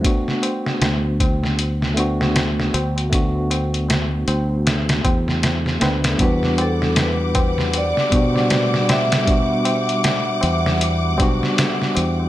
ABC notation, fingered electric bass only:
X:1
M:4/4
L:1/8
Q:"Swing 16ths" 1/4=78
K:Em
V:1 name="Fingered electric bass" clef=bass
z2 D,,4- D,, D,,- | D,,3 D,,2 E,,2 D,, | E,,4 z B,,3- | B,,3 E,,2 B,,, z E,, |]